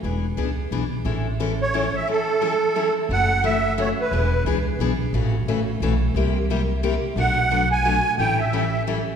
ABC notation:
X:1
M:3/4
L:1/16
Q:"Swing" 1/4=177
K:A
V:1 name="Accordion"
z12 | z6 c4 e2 | A8- A2 z2 | [K:F#m] f4 e4 c2 B2- |
B4 z8 | z12 | z12 | f6 g6 |
=g2 e6 z4 |]
V:2 name="Steel-string acoustic guitar"
[E,B,DG]2 z2 [E,B,DG] z3 [E,B,DG] z3 | [E,G,CEA]2 z2 [E,G,CEA] z3 [E,G,CEA] z3 | [E,G,CEA]2 z2 [E,G,CEA] z3 [E,G,CEA] z3 | [K:F#m] [C,E,A,CF]2 z2 [C,E,A,CF] z3 [C,E,A,CF] z3 |
[E,B,DG]2 z2 [E,B,DG] z3 [E,B,DG] z3 | [C,E,A,CF]2 z2 [C,E,A,CF] z3 [C,E,A,CF] z3 | [=C,=G,_B,E=G]2 z2 [C,G,B,EG] z3 [C,G,B,EG] z3 | [B,,F,A,DF]2 z2 [B,,F,A,DF] z3 [B,,F,A,DF] z3 |
[E,=G,CEA]2 z2 [E,G,CEA] z3 [E,G,CEA] z3 |]
V:3 name="Upright bass" clef=bass
E,,,4 C,,4 B,,,4 | A,,,12 | z12 | [K:F#m] F,,,12 |
E,,,4 C,,4 B,,,4 | A,,,4 A,,,4 B,,,4 | =C,,12 | B,,,12 |
A,,,12 |]